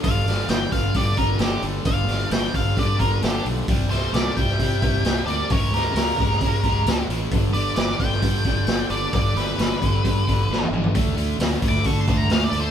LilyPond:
<<
  \new Staff \with { instrumentName = "Lead electric guitar" } { \time 4/4 \key g \mixolydian \tempo 4 = 132 f''4 g''8 f''8 d''8 bes'8 g'8 r8 | f''4 g''8 f''8 d''8 bes'8 g'8 r8 | r8 c''8 d''8 g''2 d''8 | cis''8 bes'2. r8 |
r8 d''8 d''8 g''2 d''8 | d''8 b'2. r8 | r4 \tuplet 3/2 { r4 d'''8 cis'''8 c'''8 bes''8 f''8 d''8 c''8 } | }
  \new Staff \with { instrumentName = "Lead electric guitar" } { \time 4/4 \key g \mixolydian d''4 d''8 d''8 b'8 f'8 d'8 r8 | d''4 d''8 d''8 b'8 f'8 d'8 r8 | r8 a'8 bes'8 e''2 bes'8 | bes'8 g'2. r8 |
r8 b'8 b'8 d''2 b'8 | b'8 g'2. r8 | r4 \tuplet 3/2 { r4 b''8 a''8 a''8 fis''8 c''8 b'8 a'8 } | }
  \new Staff \with { instrumentName = "Overdriven electric guitar" } { \clef bass \time 4/4 \key g \mixolydian <g, d>8 <g, d>8 <g, e>8 <g, d>8 <g, d>8 <g, d>8 <g, d>8 <g, d>8 | <g, d>8 <g, d>8 <g, e>8 <g, d>8 <g, d>8 <g, d>8 <g, d>8 <g, d>8 | <c g>8 <c g>8 <c a>8 <c g>8 <c g>8 <c g>8 <c g>8 <c g>8 | <cis gis>8 <cis gis>8 <cis bes>8 <cis gis>8 <cis gis>8 <cis gis>8 <cis gis>8 <cis gis>8 |
<g, d>8 <g, d>8 <g, e>8 <g, d>8 <g, d>8 <g, d>8 <g, d>8 <g, d>8 | <g, d>8 <g, d>8 <g, e>8 <g, d>8 <g, d>8 <g, d>8 <g, d>8 <g, d>8 | <d a>8 <d a>8 <d b>8 <d a>8 <d a>8 <d a>8 <d a>8 <d a>8 | }
  \new Staff \with { instrumentName = "Fingered electric bass" } { \clef bass \time 4/4 \key g \mixolydian g,,8 g,,8 g,,8 g,,8 g,8 g,,8 g,,8 g,,8 | g,,8 g,,8 g,,8 g,,8 g,8 g,,8 g,,8 b,,8 | c,8 c,8 c,8 c,8 c8 c,8 c,8 d,8 | cis,8 cis,8 cis,8 cis,8 cis8 cis,8 cis,8 a,,8 |
g,,8 g,,8 g,,8 g,,8 g,8 g,,8 g,,8 g,,8 | g,,8 g,,8 g,,8 g,,8 g,8 g,,8 g,,8 g,,8 | d,8 d,8 d,8 d,8 d8 d,8 d,8 d,8 | }
  \new DrumStaff \with { instrumentName = "Drums" } \drummode { \time 4/4 <hho bd>8 <hho sn>8 <hho sn>8 <hho bd>8 <hho bd>8 <hho bd>8 <hho sn>8 hho8 | <hho bd>8 <hho sn>8 <hho sn>8 <hho bd>8 <hho bd>8 <hho bd>8 <hho sn>8 hho8 | <hho bd>8 <hho sn>8 <hho sn>8 <hho bd>16 sn16 <hho bd>8 <hho bd>8 <hho sn>8 hho8 | <hho bd>8 <hho sn>8 <hho sn>8 <hho bd>16 sn16 <hho bd>8 <hho bd>8 <hho sn>8 hho8 |
<hho bd>8 hho8 <hho sn>8 <hho bd>16 sn16 <hho bd>8 <hho bd>8 <hho sn>8 hho8 | <hho bd>8 <hho sn>8 <hho sn>8 <hho bd>8 <hho bd>8 <hho bd>8 sn16 tommh16 toml16 tomfh16 | <hho bd>8 hho8 <hho sn>8 <hho bd>16 sn16 <hho bd>8 <hho bd>8 <hho sn>8 hho8 | }
>>